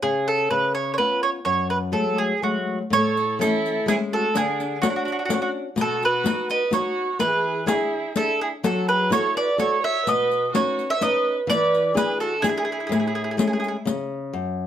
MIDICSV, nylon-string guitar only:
0, 0, Header, 1, 2, 480
1, 0, Start_track
1, 0, Key_signature, 3, "major"
1, 0, Tempo, 476569
1, 47, Time_signature, 3, 2, 24, 8
1, 14774, End_track
2, 0, Start_track
2, 0, Title_t, "Nylon-string guitar"
2, 0, Program_c, 0, 24
2, 29, Note_on_c, 0, 49, 66
2, 502, Note_off_c, 0, 49, 0
2, 513, Note_on_c, 0, 49, 59
2, 985, Note_off_c, 0, 49, 0
2, 996, Note_on_c, 0, 59, 45
2, 1001, Note_on_c, 0, 61, 35
2, 1009, Note_on_c, 0, 65, 44
2, 1384, Note_off_c, 0, 59, 0
2, 1387, Note_off_c, 0, 61, 0
2, 1392, Note_off_c, 0, 65, 0
2, 1467, Note_on_c, 0, 42, 62
2, 1933, Note_on_c, 0, 54, 46
2, 1939, Note_on_c, 0, 56, 35
2, 1942, Note_off_c, 0, 42, 0
2, 1944, Note_on_c, 0, 57, 48
2, 2335, Note_off_c, 0, 54, 0
2, 2339, Note_off_c, 0, 56, 0
2, 2340, Note_off_c, 0, 57, 0
2, 2441, Note_on_c, 0, 54, 42
2, 2444, Note_on_c, 0, 56, 40
2, 2450, Note_on_c, 0, 57, 44
2, 2836, Note_off_c, 0, 56, 0
2, 2837, Note_off_c, 0, 54, 0
2, 2838, Note_off_c, 0, 57, 0
2, 2924, Note_on_c, 0, 45, 52
2, 3402, Note_off_c, 0, 45, 0
2, 3414, Note_on_c, 0, 52, 45
2, 3417, Note_on_c, 0, 57, 43
2, 3422, Note_on_c, 0, 61, 53
2, 3803, Note_off_c, 0, 52, 0
2, 3804, Note_off_c, 0, 57, 0
2, 3808, Note_off_c, 0, 61, 0
2, 3887, Note_on_c, 0, 56, 43
2, 3895, Note_on_c, 0, 57, 44
2, 3902, Note_on_c, 0, 61, 47
2, 4278, Note_off_c, 0, 56, 0
2, 4283, Note_off_c, 0, 57, 0
2, 4287, Note_off_c, 0, 61, 0
2, 4381, Note_on_c, 0, 50, 54
2, 4847, Note_off_c, 0, 50, 0
2, 4855, Note_on_c, 0, 62, 45
2, 4859, Note_on_c, 0, 73, 49
2, 4869, Note_on_c, 0, 66, 58
2, 5240, Note_off_c, 0, 73, 0
2, 5241, Note_off_c, 0, 62, 0
2, 5249, Note_off_c, 0, 66, 0
2, 5326, Note_on_c, 0, 61, 45
2, 5332, Note_on_c, 0, 62, 39
2, 5337, Note_on_c, 0, 66, 55
2, 5715, Note_off_c, 0, 61, 0
2, 5716, Note_off_c, 0, 62, 0
2, 5717, Note_off_c, 0, 66, 0
2, 5801, Note_on_c, 0, 47, 72
2, 6271, Note_off_c, 0, 47, 0
2, 6281, Note_on_c, 0, 59, 50
2, 6286, Note_on_c, 0, 63, 44
2, 6292, Note_on_c, 0, 66, 55
2, 6667, Note_off_c, 0, 59, 0
2, 6669, Note_off_c, 0, 63, 0
2, 6674, Note_off_c, 0, 66, 0
2, 6756, Note_on_c, 0, 59, 47
2, 6760, Note_on_c, 0, 63, 45
2, 6764, Note_on_c, 0, 66, 50
2, 7144, Note_off_c, 0, 63, 0
2, 7145, Note_off_c, 0, 59, 0
2, 7149, Note_off_c, 0, 66, 0
2, 7245, Note_on_c, 0, 52, 72
2, 7712, Note_off_c, 0, 52, 0
2, 7716, Note_on_c, 0, 62, 47
2, 7722, Note_on_c, 0, 68, 51
2, 7725, Note_on_c, 0, 64, 46
2, 8106, Note_off_c, 0, 62, 0
2, 8110, Note_off_c, 0, 64, 0
2, 8111, Note_off_c, 0, 68, 0
2, 8215, Note_on_c, 0, 62, 50
2, 8218, Note_on_c, 0, 68, 44
2, 8220, Note_on_c, 0, 64, 41
2, 8600, Note_off_c, 0, 62, 0
2, 8601, Note_off_c, 0, 68, 0
2, 8602, Note_off_c, 0, 64, 0
2, 8697, Note_on_c, 0, 54, 56
2, 9165, Note_off_c, 0, 54, 0
2, 9167, Note_on_c, 0, 66, 46
2, 9168, Note_on_c, 0, 64, 49
2, 9175, Note_on_c, 0, 69, 56
2, 9556, Note_off_c, 0, 64, 0
2, 9558, Note_off_c, 0, 66, 0
2, 9562, Note_off_c, 0, 69, 0
2, 9650, Note_on_c, 0, 64, 50
2, 9650, Note_on_c, 0, 66, 43
2, 9656, Note_on_c, 0, 69, 48
2, 10038, Note_off_c, 0, 64, 0
2, 10040, Note_off_c, 0, 66, 0
2, 10043, Note_off_c, 0, 69, 0
2, 10140, Note_on_c, 0, 47, 53
2, 10607, Note_off_c, 0, 47, 0
2, 10617, Note_on_c, 0, 61, 54
2, 10621, Note_on_c, 0, 63, 46
2, 10630, Note_on_c, 0, 71, 55
2, 11002, Note_off_c, 0, 61, 0
2, 11003, Note_off_c, 0, 63, 0
2, 11010, Note_off_c, 0, 71, 0
2, 11088, Note_on_c, 0, 61, 43
2, 11095, Note_on_c, 0, 63, 46
2, 11099, Note_on_c, 0, 71, 51
2, 11474, Note_off_c, 0, 61, 0
2, 11479, Note_off_c, 0, 63, 0
2, 11481, Note_off_c, 0, 71, 0
2, 11553, Note_on_c, 0, 52, 67
2, 12026, Note_off_c, 0, 52, 0
2, 12028, Note_on_c, 0, 62, 45
2, 12033, Note_on_c, 0, 64, 41
2, 12037, Note_on_c, 0, 68, 52
2, 12419, Note_off_c, 0, 62, 0
2, 12422, Note_off_c, 0, 64, 0
2, 12423, Note_off_c, 0, 68, 0
2, 12515, Note_on_c, 0, 62, 44
2, 12520, Note_on_c, 0, 64, 39
2, 12522, Note_on_c, 0, 68, 48
2, 12902, Note_off_c, 0, 62, 0
2, 12905, Note_off_c, 0, 68, 0
2, 12906, Note_off_c, 0, 64, 0
2, 12985, Note_on_c, 0, 45, 62
2, 13459, Note_off_c, 0, 45, 0
2, 13467, Note_on_c, 0, 56, 46
2, 13472, Note_on_c, 0, 57, 44
2, 13480, Note_on_c, 0, 61, 46
2, 13861, Note_off_c, 0, 56, 0
2, 13861, Note_off_c, 0, 57, 0
2, 13862, Note_off_c, 0, 61, 0
2, 13954, Note_on_c, 0, 49, 63
2, 14427, Note_off_c, 0, 49, 0
2, 14437, Note_on_c, 0, 42, 62
2, 14774, Note_off_c, 0, 42, 0
2, 14774, End_track
0, 0, End_of_file